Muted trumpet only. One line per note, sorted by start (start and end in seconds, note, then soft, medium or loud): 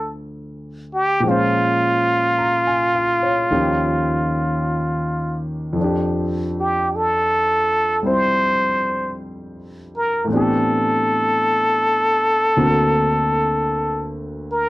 0.00 0.14 A4 medium
0.94 1.30 G4 medium
1.28 5.43 F4 medium
6.60 6.97 G4 medium
6.96 8.09 A4 medium
8.07 9.17 C5 medium
9.97 10.28 A#4 medium
10.34 14.09 A4 medium
14.52 14.69 A#4 medium